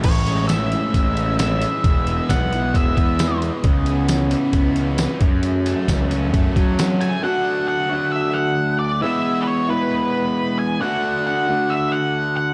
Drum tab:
CC |x-------|--------|--------|--------|
HH |xxxxxxxx|xxxxxxxx|xxxxxxxx|xxxxxxxx|
TB |--x---x-|--x---x-|--x---x-|--x---x-|
SD |--o---o-|--o---o-|--o---o-|--o---o-|
BD |o---o---|o-o-oo--|o---o--o|--o-oo--|

CC |--------|--------|--------|
HH |--------|--------|--------|
TB |--------|--------|--------|
SD |--------|--------|--------|
BD |--------|--------|--------|